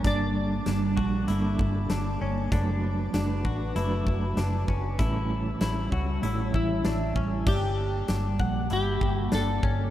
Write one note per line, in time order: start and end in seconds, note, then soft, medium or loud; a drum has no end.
0.00 2.49 G3 medium
0.00 0.64 G3 medium
0.00 2.48 A#3 medium
0.00 7.43 A5 medium
0.00 4.96 D6 medium
0.04 0.59 G1 medium
0.04 0.66 A#3 medium
0.04 0.65 D4 loud
0.04 0.68 D4 medium
0.04 0.68 A4 medium
0.04 0.64 D5 loud
0.04 kick loud
0.04 closed hi-hat medium
0.65 0.94 G1 loud
0.65 1.26 G3 medium
0.65 1.27 A#3 medium
0.65 0.97 D4 medium
0.65 1.30 D4 medium
0.65 snare loud
0.65 closed hi-hat medium
0.65 tambourine medium
0.71 1.30 A4 medium
0.97 1.25 A#1 medium
0.97 1.27 F#4 medium
0.97 kick medium
1.27 1.55 G1 loud
1.27 2.21 G3 medium
1.27 2.21 A#3 medium
1.27 2.22 D4 medium
1.27 1.90 E4 medium
1.27 2.19 A4 loud
1.27 closed hi-hat medium
1.59 1.87 G1 loud
1.59 kick medium
1.90 2.17 G1 medium
1.90 2.21 D4 medium
1.90 snare medium
1.90 closed hi-hat medium
1.90 tambourine medium
2.20 2.48 G1 medium
2.20 2.52 C#4 medium
2.20 2.52 D4 soft
2.20 2.51 A4 medium
2.25 2.52 A#3 soft
2.51 3.06 F#1 loud
2.51 3.13 F#3 medium
2.51 3.12 A3 medium
2.51 3.13 D4 loud
2.51 3.14 D4 medium
2.51 4.97 F#4 medium
2.51 3.15 F#4 medium
2.51 4.97 B4 medium
2.51 3.15 B4 medium
2.51 kick loud
2.51 closed hi-hat medium
3.13 3.41 F#1 medium
3.13 3.75 A3 medium
3.13 3.45 D4 medium
3.13 3.76 D4 medium
3.13 3.77 F#4 medium
3.13 snare loud
3.13 closed hi-hat medium
3.13 tambourine medium
3.18 3.77 B4 medium
3.45 3.72 A1 medium
3.45 3.76 F#4 medium
3.45 kick medium
3.75 4.03 F#1 medium
3.75 4.68 F#3 medium
3.75 4.70 A3 loud
3.75 4.69 D4 medium
3.75 4.38 E4 medium
3.75 4.69 F#4 medium
3.75 4.66 B4 loud
3.75 closed hi-hat medium
4.07 4.34 F#1 medium
4.07 kick medium
4.37 4.65 F#1 loud
4.37 4.68 D4 medium
4.37 snare loud
4.37 closed hi-hat medium
4.37 tambourine medium
4.67 4.96 F#1 medium
4.67 4.99 C#4 medium
4.67 5.00 F#4 soft
4.67 4.99 B4 soft
4.67 kick medium
4.72 5.00 D4 soft
4.98 5.54 A1 loud
4.98 5.60 A2 loud
4.98 5.61 E3 medium
4.98 7.44 G3 medium
4.98 5.59 G3 medium
4.98 5.60 C#4 medium
4.98 5.60 E4 medium
4.98 5.62 E4 medium
4.98 5.65 A4 medium
4.98 7.44 C#5 medium
4.98 7.44 E6 medium
4.98 kick loud
4.98 closed hi-hat medium
5.59 5.88 A1 medium
5.59 6.23 G3 medium
5.59 6.23 C#4 medium
5.59 5.92 E4 medium
5.59 6.24 E4 medium
5.59 snare loud
5.59 closed hi-hat medium
5.59 tambourine medium
5.65 6.25 A4 medium
5.92 6.19 C#2 medium
5.92 6.23 F#4 medium
5.92 kick medium
6.22 6.50 A1 medium
6.22 7.15 A2 medium
6.22 7.16 E3 medium
6.22 7.17 G3 loud
6.22 7.16 C#4 medium
6.22 6.85 E4 medium
6.22 7.15 E4 medium
6.22 7.13 A4 medium
6.22 closed hi-hat medium
6.54 6.81 A1 medium
6.54 7.50 E4 medium
6.54 kick medium
6.85 7.12 A1 loud
6.85 7.16 D4 medium
6.85 snare loud
6.85 closed hi-hat medium
6.85 tambourine medium
7.14 7.43 A1 medium
7.14 7.46 C#4 medium
7.14 7.47 E4 medium
7.14 7.46 A4 soft
7.14 kick medium
7.18 7.49 G3 soft
7.18 7.48 C#4 soft
7.46 8.01 G1 loud
7.46 9.90 G3 medium
7.46 9.90 A#3 medium
7.46 8.07 D4 loud
7.46 8.72 G4 loud
7.46 9.90 A5 medium
7.46 9.90 D6 medium
7.46 kick loud
7.46 crash medium
8.08 8.36 G1 medium
8.08 8.40 D4 medium
8.08 snare loud
8.08 closed hi-hat medium
8.08 tambourine medium
8.40 8.67 A#1 medium
8.40 8.70 F#5 medium
8.40 kick medium
8.70 8.98 G1 medium
8.70 9.32 E4 medium
8.70 9.18 G4 loud
8.70 closed hi-hat medium
9.01 9.29 G1 loud
9.01 kick medium
9.18 9.34 F#4 loud
9.32 9.60 G1 loud
9.32 9.63 D4 medium
9.32 9.90 A4 loud
9.32 snare loud
9.32 closed hi-hat medium
9.32 tambourine medium
9.63 9.90 G1 loud
9.63 9.90 C#4 medium
9.63 kick medium